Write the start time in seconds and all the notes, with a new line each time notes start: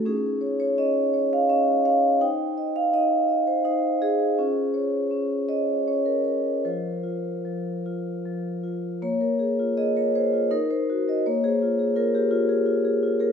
0.05 C#4 D#4 F4 G#4
0.41 C#5
0.60 C#5
0.78 C#4 D#5
1.14 C#5
1.33 F5
1.50 C#4 D#5
1.85 C#5 F5
2.21 D#4 C5 G5
2.58 D#5
2.76 F5
2.94 D#4 D#5
3.29 D#5
3.47 C5
3.65 D#4 C5
4.02 G#4 D#5
4.38 C#4 F4 C5
4.74 C#5
5.11 C#4
5.49 C#5 D#5
5.87 C#4 C#5
6.06 A#4
6.24 C#5
6.65 F3 F4 A#4 C5
7.03 F4
7.45 F3
7.86 F4
8.25 F3
8.63 F4
9.02 A#3 C#5
9.21 A#4
9.39 G#4
9.59 F4
9.77 G#4 D#5
9.96 A#4 C#5
10.15 G#4 C5
10.33 F4
10.51 D#4 A#4
10.71 A#4 C5
10.90 F#4
11.08 A#4 D#5
11.26 A#3 C#5
11.44 G#4 C5
11.62 F4
11.79 G#4
11.96 F4 A#4
12.14 G4 G#4
12.31 F4
12.49 G#4
12.66 F4
12.85 G#4
13.03 F4
13.20 G#4 A#4